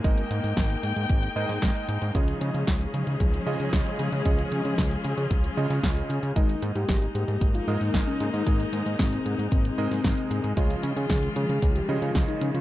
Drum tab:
HH |xxxxxxxxxx-xxxxx|xxxxxxxxxx-xxxxx|xxxxxxxxxx-xxxxx|xxxxxxxxxx-xxxxx|
SD |----o------oo---|----o-------o---|----o------oo---|----o-------o---|
BD |o---o---o---o---|o---o---o---o---|o---o---o---o---|o---o---o---o---|

HH |xxxxxxxxxx-xxxxx|xxxxxxxxxx-xxxxx|
SD |----o------oo---|----o-------o---|
BD |o---o---o---o---|o---o---o---o---|